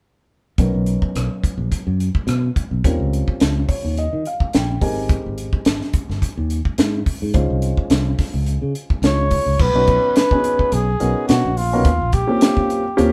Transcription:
0.58 B1 F#3 B3 C#4 D#4 A#4, kick, closed hi-hat
0.74 B1
0.86 closed hi-hat
1.02 kick
1.15 B1, cross-stick, closed hi-hat
1.43 muted fingered electric bass stroke, kick, closed hi-hat
1.58 A#1
1.72 kick, closed hi-hat
1.87 F#2
2.00 closed hi-hat
2.15 kick
2.27 B2, cross-stick, closed hi-hat
2.56 kick, closed hi-hat
2.71 B1
2.84 D#2 G3 C4 C#4 F4 A#4, kick, closed hi-hat
3.00 C#2
3.13 closed hi-hat
3.28 kick
3.40 C#2, snare, closed hi-hat
3.69 C#5, kick, open hi-hat
3.85 D#2
3.97 D#5, closed hi-hat
4.13 D#3
4.25 F5, closed hi-hat
4.40 muted fingered electric bass stroke, kick
4.53 A#1 G5, snare, closed hi-hat
4.81 G#1 G#3 C4 D#4 G4 A#4 G#5, kick, open hi-hat
5.09 kick, closed hi-hat
5.26 G#1
5.38 closed hi-hat
5.53 kick
5.65 G#1, snare, closed hi-hat
5.82 snare
5.93 muted fingered electric bass stroke, kick, closed hi-hat
6.09 G1, snare
6.22 kick, closed hi-hat
6.37 D#2
6.50 closed hi-hat
6.65 kick
6.78 G#2, snare, closed hi-hat
7.06 kick, open hi-hat
7.22 G#2
7.34 C#2 G#3 C#4 D#4 F4 C5, kick, closed hi-hat
7.50 C2
7.62 closed hi-hat
7.77 kick
7.90 C2, snare, closed hi-hat
8.19 kick, snare, open hi-hat
8.34 C#2
8.46 closed hi-hat
8.62 C#3
8.75 closed hi-hat
8.90 muted fingered electric bass stroke, kick
9.02 C#2 G#3 C#4 D#4 F4 C#5, snare, closed hi-hat
9.06 C#5
9.31 kick, open hi-hat
9.46 C#2
9.59 B1 B4, kick, crash
9.74 B1 B3 C#4 D#4 F#4 B4
9.87 kick, closed hi-hat
10.16 B4, snare, closed hi-hat
10.31 B3 C#4 D#4 F#4 G#4, kick
10.44 closed hi-hat
10.59 kick
10.72 B1 G#4, closed hi-hat
11.00 B1 B3 C#4 D#4 F#4 A#4, closed hi-hat
11.28 B2 F#4, snare, closed hi-hat
11.45 A#1
11.57 F4, open hi-hat
11.73 B3 C#4 D#4 F#4 A#4
11.85 D#2, kick, closed hi-hat
12.01 A#1
12.13 G4, kick, closed hi-hat
12.27 A#3 C4 C#4 F4 G4
12.41 snare, closed hi-hat
12.57 kick
12.70 closed hi-hat
12.97 D#2 A#3 C4 C#4 F4 G4, closed hi-hat

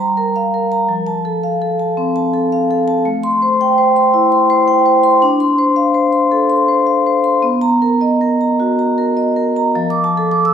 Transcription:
Already playing: G3
0.00 A#5
0.17 A#4
0.36 F5
0.54 A#4
0.72 A#5
0.89 F3
1.06 A5
1.25 A4
1.43 F5
1.62 A4
1.79 A5
1.97 C4
2.16 A5
2.33 A4
2.52 F5
2.71 A4
2.88 A5
3.05 A3
3.23 C6
3.42 C5
3.61 G5
3.78 C5
3.96 C6
4.14 E4
4.32 C6
4.50 C5
4.68 G5
4.86 C5
5.03 C6
5.22 D4
5.40 C6
5.58 C5
5.76 F5
5.94 C5
6.13 C6
6.32 A4
6.50 C6
6.68 C5
6.87 F5
7.06 C5
7.24 C6
7.42 B3
7.61 A#5
7.82 A#4
8.01 D#5
8.21 A#4
8.41 A#5
8.60 F#4
8.79 A#5
8.98 A#4
9.17 D#5
9.36 A#4
9.56 A#5
9.75 F3
9.90 D6
10.04 A5
10.17 A4
10.31 D6
10.45 E6

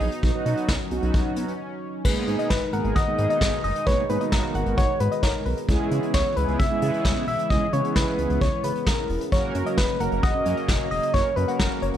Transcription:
Already playing: F#3 B3 D#4 D#5
0.00 A#1, open hi-hat
0.12 closed hi-hat
0.23 B1 F#3 B3 C#4 D#4 F#4, kick, closed hi-hat
0.35 F#3 B3 D#4 F#4
0.46 B2, closed hi-hat
0.57 closed hi-hat
0.68 B1, kick, snare
0.91 B1 F#3 B3 D#4 F#4, closed hi-hat
1.02 B1, closed hi-hat
1.14 B1, kick, closed hi-hat
1.36 B2, closed hi-hat
1.48 closed hi-hat
2.05 G#1 B2 D#3 G#3 A#3 B3 D#4 G#4 A#4 B4, kick, crash
2.28 G#2, closed hi-hat
2.39 D#5, closed hi-hat
2.50 G#1 B4, kick, snare
2.73 G#1 G#3 A#3 B3 D#4 G#4 A#4 F#5, closed hi-hat
2.84 G#1, closed hi-hat
2.96 G#1 D#5 F#5, kick, closed hi-hat
3.07 G#3 A#3 B3 D#4 G#4
3.18 G#2, closed hi-hat
3.30 D#5, closed hi-hat
3.41 G#1 D#5, kick, snare
3.64 F#1 D#5, open hi-hat
3.76 closed hi-hat
3.86 G#1 G#3 A#3 B3 D#4 G#4 B4 C#5, kick, closed hi-hat
4.09 G#2 G#3 A#3 B3 D#4 G#4 B4, closed hi-hat
4.21 G#3 A#3 B3 D#4 F#4 D#5, closed hi-hat
4.32 G#1 A#4, kick, snare
4.55 G#1 F#5, closed hi-hat
4.66 G#1, closed hi-hat
4.77 G#1 C#5 F#5, kick, closed hi-hat
5.00 G#2 B4, closed hi-hat
5.11 D#5, closed hi-hat
5.23 G#1 A#4 C#5, kick, snare
5.45 B1 B4, open hi-hat
5.57 closed hi-hat
5.69 C#2 C#3 E3 G#3 B3 C#4 E4 G#4, kick, closed hi-hat
5.91 C#3, closed hi-hat
6.03 closed hi-hat
6.14 C#2 C#5, kick, snare
6.37 C#2 G#3 B3 C#4 E4 G#4 B4, closed hi-hat
6.48 C#2, closed hi-hat
6.59 C#2 E5, kick, closed hi-hat
6.71 G#3 B3 C#4 E4 G#4
6.82 C#3, closed hi-hat
6.94 closed hi-hat
7.05 C#2, kick, snare
7.28 B1 E5, open hi-hat
7.39 closed hi-hat
7.50 C#2 G#3 B3 C#4 E4 G#4 D#5, kick, closed hi-hat
7.73 C#3 G#3 B3 C#4 E4 B4 C#5, closed hi-hat
7.85 G#3 B3 C#4 E4 G#4, closed hi-hat
7.96 C#2 B4, kick, snare
8.18 C#2, closed hi-hat
8.30 C#2, closed hi-hat
8.41 C#2 C#5, kick, closed hi-hat
8.64 C#3 B4, closed hi-hat
8.75 closed hi-hat
8.87 C#2 A#4, kick, snare
9.09 E1, open hi-hat
9.21 closed hi-hat
9.32 F#1 F#3 A#3 C#4 F#4 A#4 C#5, kick, closed hi-hat
9.55 F#2, closed hi-hat
9.66 D#5, closed hi-hat
9.78 F#1 B4, kick, snare
10.00 F#1 F#3 A#3 C#4 F#4 A#4 F#5, closed hi-hat
10.12 F#1, closed hi-hat
10.23 F#1 D#5 F#5, kick, closed hi-hat
10.35 F#3 A#3 C#4 F#4 A#4
10.46 F#2, closed hi-hat
10.57 D#5, closed hi-hat
10.68 F#1 D#5, kick, snare
10.91 E1 D#5, open hi-hat
11.03 closed hi-hat
11.14 F#1 F#3 A#3 C#4 F#4 A#4 C#5, kick, closed hi-hat
11.36 F#2 F#3 A#3 C#4 F#4 A#4 B4, closed hi-hat
11.48 F#3 A#3 C#4 F#4 A#4 F#5, closed hi-hat
11.59 F#1 A#4, kick, snare
11.82 F#1 C#5, closed hi-hat
11.94 F#1, closed hi-hat

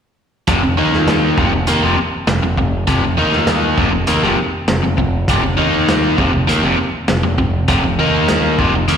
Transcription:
0.47 F1 F2 C3, kick, closed hi-hat
0.62 F1 F2 C3
0.77 D#2 D#3 A#3 D#4
0.93 snare
1.08 snare, closed hi-hat
1.37 F1 F2 C3, kick
1.53 F1 F2 C3
1.67 D#2 D#3 A#3, closed hi-hat
1.82 F1 F2 C3
1.97 muted picked electric bass stroke, muted overdriven electric guitar stroke
2.27 F1 F2 C3, snare, closed hi-hat
2.42 F1 F2 C3
2.57 F1 F2 C3, kick
2.87 F1 F2 C3, kick, closed hi-hat
3.02 F1 F2 C3
3.17 D#2 D#3 A#3 D#4
3.32 snare
3.47 snare, closed hi-hat
3.78 F1 F2 C3, kick
3.91 F1 F2 C3
4.07 D#2 D#3 A#3, closed hi-hat
4.23 F1 F2 C3, snare
4.37 muted overdriven electric guitar stroke, muted picked electric bass stroke
4.68 F1 F2 C3, snare, closed hi-hat
4.82 F1 F2 C3
4.97 F1 F2 C3, kick
5.28 F1 F2 C3, kick, closed hi-hat
5.43 F1 F2 C3
5.57 D#2 D#3 A#3 D#4
5.89 snare, closed hi-hat
6.18 F1 F2 C3, kick
6.32 F1 F2 C3
6.47 D#2 D#3 A#3, closed hi-hat
6.63 F1 F2 C3
6.78 muted overdriven electric guitar stroke, muted picked electric bass stroke
7.08 F1 F2 C3, snare, closed hi-hat
7.23 F1 F2 C3
7.38 F1 F2 C3, kick
7.68 F1 F2 C3, kick, closed hi-hat
7.83 F1 F2 C3
7.99 D#2 D#3 A#3 D#4
8.28 snare, closed hi-hat
8.59 F1 F2 C3, kick
8.72 F1 F2 C3
8.87 D#2 D#3 A#3, closed hi-hat

